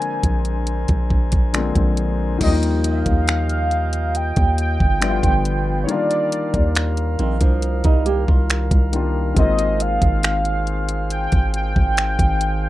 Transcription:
0.00 1.49 D3 medium
0.00 1.49 F3 medium
0.00 1.50 G#3 medium
0.00 1.51 A#3 medium
0.00 1.52 C4 medium
0.00 2.37 D4 medium
0.00 2.37 A#4 medium
0.00 2.37 C5 medium
0.00 1.51 G#5 loud
0.00 2.37 G#5 medium
0.00 closed hi-hat soft
0.23 0.86 A#1 loud
0.23 kick medium
0.23 closed hi-hat medium
0.45 closed hi-hat medium
0.67 closed hi-hat medium
0.88 1.72 A#1 loud
0.88 kick loud
0.88 closed hi-hat soft
1.10 kick medium
1.32 kick medium
1.32 closed hi-hat medium
1.53 2.41 D3 medium
1.53 2.39 F3 medium
1.53 2.41 G#3 medium
1.53 2.41 A#3 medium
1.53 2.42 C4 medium
1.53 finger snap loud
1.53 closed hi-hat medium
1.75 2.38 A#1 loud
1.75 kick medium
1.75 closed hi-hat medium
1.97 closed hi-hat medium
2.38 3.04 D#2 loud
2.38 4.97 D#3 medium
2.38 4.97 F3 medium
2.38 4.98 G3 medium
2.38 5.85 F4 medium
2.38 4.99 D#5 medium
2.38 5.85 G5 medium
2.38 kick loud
2.38 closed hi-hat medium
2.38 crash medium
2.43 4.99 A#3 medium
2.43 2.49 D4 medium
2.43 2.57 D#5 medium
2.51 5.03 D#4 medium
2.63 closed hi-hat medium
2.84 4.18 F5 loud
2.84 closed hi-hat medium
3.06 4.33 D#2 loud
3.06 kick loud
3.06 closed hi-hat medium
3.28 finger snap loud
3.28 closed hi-hat medium
3.50 closed hi-hat soft
3.71 closed hi-hat soft
3.93 closed hi-hat medium
4.15 4.59 G5 loud
4.15 closed hi-hat medium
4.36 4.78 D#2 loud
4.36 kick loud
4.36 closed hi-hat medium
4.58 5.79 G5 loud
4.58 closed hi-hat medium
4.80 5.22 G1 loud
4.80 kick medium
5.01 5.88 D3 medium
5.01 5.89 F3 medium
5.01 5.87 G3 medium
5.01 5.89 B3 medium
5.01 5.09 E4 medium
5.01 5.88 B4 medium
5.01 finger snap loud
5.01 closed hi-hat medium
5.10 5.91 F4 medium
5.23 5.86 G1 loud
5.23 kick medium
5.23 closed hi-hat medium
5.45 closed hi-hat medium
5.84 8.88 D#3 medium
5.84 5.92 C#5 medium
5.88 12.69 D#3 medium
5.88 8.89 G3 medium
5.88 8.89 A#3 medium
5.88 8.90 D4 medium
5.88 9.33 A#4 medium
5.88 7.20 D5 loud
5.88 12.69 F5 medium
5.88 closed hi-hat medium
5.93 8.91 F4 medium
6.11 closed hi-hat medium
6.32 closed hi-hat medium
6.54 7.17 D#2 loud
6.54 kick loud
6.54 closed hi-hat soft
6.75 finger snap loud
6.75 closed hi-hat medium
6.97 closed hi-hat soft
7.19 7.40 A#1 loud
7.19 7.40 D#3 medium
7.19 7.40 C4 medium
7.19 closed hi-hat soft
7.41 7.83 C2 loud
7.41 7.83 F3 medium
7.41 7.82 D4 medium
7.41 kick medium
7.41 closed hi-hat medium
7.62 closed hi-hat medium
7.84 8.26 C2 loud
7.84 8.05 G3 medium
7.84 8.05 D#4 medium
7.84 kick loud
7.84 closed hi-hat soft
8.06 8.27 A#3 medium
8.06 8.27 G4 medium
8.06 closed hi-hat medium
8.28 8.70 C2 loud
8.28 9.33 F4 medium
8.28 kick medium
8.50 finger snap loud
8.50 closed hi-hat medium
8.71 9.34 C2 loud
8.71 kick loud
8.71 closed hi-hat medium
8.92 9.33 D#3 medium
8.92 9.37 G3 medium
8.92 9.36 A#3 medium
8.92 9.37 D4 medium
8.92 9.38 F4 medium
8.92 closed hi-hat medium
9.34 9.99 G#1 loud
9.34 12.69 D#3 medium
9.34 12.69 G#3 medium
9.34 12.69 A#3 medium
9.34 12.69 G#4 medium
9.34 12.69 C5 medium
9.34 9.83 D#5 loud
9.34 kick loud
9.34 closed hi-hat medium
9.39 12.69 C4 medium
9.39 12.69 F4 medium
9.59 closed hi-hat medium
9.80 11.11 F5 loud
9.80 closed hi-hat medium
10.02 11.28 G#1 loud
10.02 kick loud
10.02 closed hi-hat medium
10.23 finger snap loud
10.23 closed hi-hat medium
10.45 closed hi-hat soft
10.67 closed hi-hat soft
10.89 closed hi-hat medium
11.10 11.52 G5 loud
11.10 closed hi-hat medium
11.32 11.74 G#1 loud
11.32 kick loud
11.32 closed hi-hat soft
11.54 12.69 G5 loud
11.54 closed hi-hat medium
11.76 12.18 G#1 loud
11.76 kick loud
11.97 finger snap loud
11.97 closed hi-hat medium
12.19 12.69 G#1 loud
12.19 kick medium
12.19 closed hi-hat medium
12.41 closed hi-hat medium

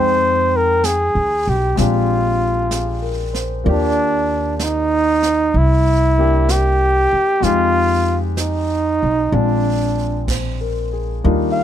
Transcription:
0.00 1.11 F2 medium
0.00 1.74 G#3 medium
0.00 1.75 C4 soft
0.00 1.79 D#4 soft
0.00 0.58 C5 medium
0.00 1.81 G5 medium
0.56 0.86 A#4 medium
0.84 1.51 G#4 medium
0.84 brush sweep soft
0.84 snare soft
0.84 hi-hat pedal soft
1.15 1.44 D#2 medium
1.47 1.76 B1 medium
1.47 1.78 G4 medium
1.76 3.62 A#1 medium
1.76 3.65 G#3 soft
1.76 3.65 C4 soft
1.76 3.66 D4 soft
1.76 3.33 F4 medium
1.76 brush sweep soft
1.76 snare soft
1.80 3.67 G4 soft
2.71 3.32 G#4 soft
2.71 brush sweep soft
2.71 snare soft
2.71 hi-hat pedal soft
3.02 3.52 A#4 soft
3.34 3.83 C5 soft
3.34 snare soft
3.64 5.50 D#2 medium
3.64 5.53 A#3 soft
3.64 5.55 F4 soft
3.64 5.54 D5 soft
3.64 brush sweep soft
3.69 4.56 D4 medium
3.69 5.56 G4 medium
4.56 4.64 D4 soft
4.56 brush sweep soft
4.56 snare soft
4.56 hi-hat pedal soft
4.63 5.59 D#4 medium
5.23 snare soft
5.54 7.09 C2 medium
5.54 6.53 E4 medium
5.54 brush sweep soft
6.18 7.42 A#3 soft
6.18 7.43 D4 soft
6.18 7.43 E4 soft
6.18 7.43 G4 medium
6.49 7.45 G4 medium
6.49 brush sweep soft
6.49 snare soft
6.49 hi-hat pedal soft
7.13 muted upright bass stroke soft
7.40 8.98 F2 medium
7.40 9.31 G#3 medium
7.40 9.31 C4 soft
7.40 9.33 D#4 soft
7.40 8.21 F4 medium
7.40 brush sweep soft
7.40 snare soft
7.45 9.34 G4 medium
8.37 9.35 D#4 medium
8.37 brush sweep soft
8.37 snare soft
8.37 hi-hat pedal soft
9.03 9.31 B1 medium
9.32 11.20 A#1 medium
9.32 11.24 G#3 soft
9.32 11.24 C4 soft
9.32 10.29 D4 medium
9.32 11.23 D4 soft
9.32 11.24 F4 soft
9.32 brush sweep soft
10.28 10.91 C5 soft
10.28 brush sweep soft
10.28 kick medium
10.28 snare soft
10.28 hi-hat pedal soft
10.28 crash soft
10.61 11.11 A#4 soft
10.93 11.43 G#4 soft
11.23 11.64 D#2 medium
11.23 11.64 G3 soft
11.23 11.64 A#3 soft
11.23 11.64 D4 soft
11.23 11.64 D#4 soft
11.23 11.64 F4 medium
11.23 brush sweep soft
11.51 11.64 F5 medium

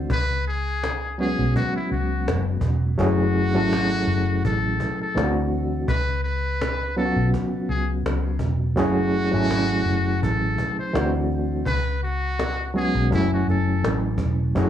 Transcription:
0.00 0.11 E3 medium
0.00 0.12 A3 medium
0.00 0.12 C4 medium
0.00 0.12 D4 medium
0.00 0.12 F#4 medium
0.10 1.34 C#2 medium
0.10 0.43 B4 loud
0.10 cajon bass loud
0.47 1.15 G#4 medium
0.47 cajon slap soft
0.83 cajon slap loud
1.18 2.51 F#3 medium
1.18 2.52 G#3 medium
1.18 2.52 B3 medium
1.18 2.52 C#4 medium
1.18 2.52 F#4 medium
1.18 1.52 G#4 medium
1.18 cajon slap soft
1.38 1.54 B1 medium
1.56 1.73 F#4 medium
1.56 cajon bass medium
1.76 1.90 E4 medium
1.91 2.29 C#2 medium
1.91 2.44 F#4 medium
1.91 cajon slap soft
2.28 2.61 F#1 medium
2.28 cajon slap loud
2.61 2.96 E1 medium
2.61 cajon bass medium
2.98 3.55 F#1 loud
2.98 3.49 F#3 loud
2.98 3.49 A3 medium
2.98 3.50 C#4 medium
2.98 3.50 E4 medium
2.98 4.40 F#4 loud
2.98 3.50 G#4 loud
2.98 cajon bass loud
3.36 cajon slap soft
3.55 4.04 G#1 medium
3.55 4.85 F#3 medium
3.55 4.85 A3 medium
3.55 4.86 C#4 medium
3.55 4.86 E4 medium
3.55 4.86 A4 medium
3.73 cajon slap loud
4.07 4.41 F#1 medium
4.07 cajon slap soft
4.45 4.78 A1 medium
4.45 4.97 A4 medium
4.45 cajon bass medium
4.80 cajon bass medium
5.01 5.33 A4 medium
5.15 5.84 D2 loud
5.15 5.82 E3 medium
5.15 5.82 A3 medium
5.15 5.82 C4 medium
5.15 5.83 D4 medium
5.15 5.24 F4 medium
5.15 cajon slap loud
5.24 5.86 F#4 medium
5.53 cajon slap soft
5.88 7.13 C#2 loud
5.88 6.21 B4 loud
5.88 cajon bass loud
6.24 6.93 B4 medium
6.24 cajon slap soft
6.62 cajon slap loud
6.97 8.29 F#3 medium
6.97 8.30 B3 medium
6.97 8.30 C#4 medium
6.97 7.05 F4 medium
6.97 7.30 A4 medium
6.97 cajon slap soft
7.06 8.34 F#4 medium
7.16 7.32 B1 medium
7.34 cajon bass medium
7.69 8.03 C#2 medium
7.69 7.87 G#4 medium
7.69 cajon slap soft
8.06 8.41 C#2 loud
8.06 cajon slap loud
8.39 8.77 E1 medium
8.39 cajon bass medium
8.76 9.30 F#1 loud
8.76 9.27 F#3 loud
8.76 9.27 A3 medium
8.76 9.28 C#4 loud
8.76 9.28 E4 medium
8.76 10.18 F#4 loud
8.76 9.29 G#4 loud
8.76 cajon bass loud
9.15 cajon slap soft
9.32 9.83 G#1 medium
9.32 10.63 F#3 medium
9.32 10.63 A3 medium
9.32 10.63 C#4 medium
9.32 10.64 E4 medium
9.32 10.64 G#5 medium
9.51 cajon slap loud
9.85 10.20 F#1 medium
9.85 cajon slap soft
10.23 10.57 A1 medium
10.23 10.75 A4 medium
10.23 cajon bass medium
10.58 cajon bass medium
10.79 11.11 C5 medium
10.93 11.62 D2 loud
10.93 11.60 E3 medium
10.93 11.61 A3 medium
10.93 11.61 C4 medium
10.93 11.61 D4 medium
10.93 11.61 F#4 medium
10.93 cajon slap loud
11.31 cajon slap soft
11.66 12.91 C#2 loud
11.66 11.99 B4 loud
11.66 cajon bass loud
12.03 12.71 F#4 medium
12.03 cajon slap soft
12.39 cajon slap loud
12.74 13.10 F#3 medium
12.74 13.10 G#3 medium
12.74 13.11 B3 medium
12.74 13.11 C#4 medium
12.74 13.12 F#4 medium
12.74 13.08 G#4 medium
12.74 cajon slap soft
12.95 13.10 B1 medium
13.11 13.46 F#1 loud
13.11 14.44 F#3 medium
13.11 13.18 G#3 medium
13.11 14.44 C#4 medium
13.11 14.45 E4 medium
13.11 13.30 E4 medium
13.11 14.45 G#5 medium
13.11 cajon bass medium
13.18 14.47 A3 medium
13.34 13.47 F#4 medium
13.48 13.81 F#1 medium
13.48 14.01 A4 medium
13.48 cajon slap soft
13.84 14.18 A1 medium
13.84 cajon slap loud
14.18 14.53 E1 medium
14.18 cajon bass loud
14.55 14.70 F#1 loud
14.55 14.70 F#3 medium
14.55 14.70 A3 medium
14.55 14.70 C#4 medium
14.55 14.70 E4 medium
14.55 14.70 F#4 loud
14.55 14.70 G#4 loud
14.55 cajon bass loud

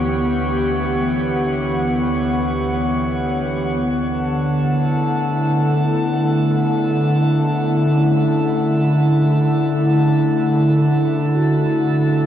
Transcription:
0.00 3.80 D2 medium
0.00 3.80 E3 medium
0.00 7.63 B3 medium
0.00 3.80 G4 medium
0.00 3.82 C#5 medium
0.00 12.26 F#5 medium
0.00 3.82 C#6 medium
3.79 12.26 D3 medium
3.79 12.26 A4 medium
3.79 12.26 A5 medium
4.03 5.28 D5 medium
4.56 12.26 E4 medium
4.97 12.26 A3 medium
6.51 7.76 A4 medium
7.95 9.20 C#4 medium
11.35 12.26 F#4 medium

